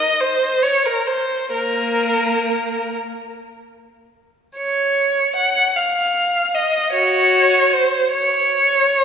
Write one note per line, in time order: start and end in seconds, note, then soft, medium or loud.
0.00 0.20 D#5 medium
0.21 0.64 C5 medium
0.63 0.85 C#5 medium
0.86 1.08 A#4 soft
1.07 1.53 C5 medium
1.54 2.93 A#3 soft
1.54 2.94 A#4 medium
4.57 5.32 C#5 medium
5.37 5.75 F#5 medium
5.76 6.54 F5 medium
6.55 6.93 D#5 medium
6.93 7.69 F#4 soft
6.93 7.71 C#5 medium
7.74 8.12 C5 medium
8.12 9.04 C#5 medium